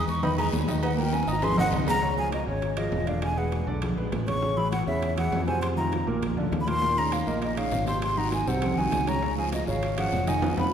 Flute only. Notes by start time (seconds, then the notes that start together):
0.09 C#6
0.24 B5
0.38 A#5
0.83 F#5
0.98 G5
1.13 G#5
1.28 A#5
1.44 C6
1.59 F#5
1.89 A#5
2.18 G#5
2.33 D#5
2.47 C#5
2.77 D#5
3.08 F5
3.23 G#5
3.38 F#5
4.28 C#6
4.57 B5
4.72 F#5
4.87 E5
5.17 F#5
5.47 G#5
5.62 C6
5.77 A#5
6.61 B5
6.67 C6
6.98 A#5
7.12 F5
7.28 D#5
7.42 D#5
7.58 F5
7.87 C6
8.03 C6
8.18 A#5
8.33 G#5
8.48 F#5
8.78 G#5
9.08 A#5
9.38 G#5
9.53 D#5
9.68 F5
9.98 F#5
10.28 G#5
10.58 B5